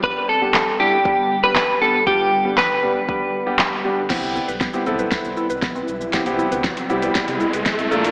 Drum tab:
CC |----------------|----------------|x---------------|----------------|
HH |----------------|----------------|----------------|xx-xxx-xxx-xxx-x|
SH |----------------|----------------|xxxxxxxxxxxxxxxx|xxxxxxxxxxxxxxxx|
CP |----x-------x---|----x-------x---|----------------|----------------|
SD |----o-------o---|----o-------o---|o---o---o---o---|o---o---o---o---|
BD |o---o---o---o---|o---o---o---o---|o---o---o---o---|o---o---o---o---|